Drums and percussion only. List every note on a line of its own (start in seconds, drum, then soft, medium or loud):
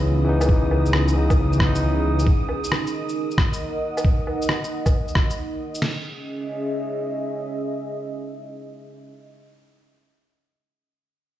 0.41 low woodblock medium
0.41 shaker medium
0.49 kick loud
0.71 low woodblock soft
0.86 shaker medium
0.93 cross-stick loud
0.93 low woodblock soft
1.08 shaker soft
1.30 kick loud
1.30 low woodblock medium
1.30 shaker medium
1.53 shaker soft
1.60 kick loud
1.60 cross-stick loud
1.75 shaker medium
2.19 shaker medium
2.27 kick loud
2.49 low woodblock soft
2.64 shaker medium
2.72 cross-stick loud
2.72 low woodblock soft
2.87 shaker soft
3.09 shaker medium
3.31 shaker soft
3.38 kick loud
3.38 cross-stick loud
3.53 shaker medium
3.97 low woodblock medium
3.97 shaker medium
4.05 kick loud
4.27 low woodblock soft
4.42 shaker soft
4.49 cross-stick loud
4.49 low woodblock soft
4.64 shaker soft
4.86 kick loud
4.86 low woodblock medium
4.86 shaker soft
5.08 shaker soft
5.15 kick loud
5.15 cross-stick loud
5.30 shaker soft
5.75 shaker soft
5.82 snare medium
5.82 crash medium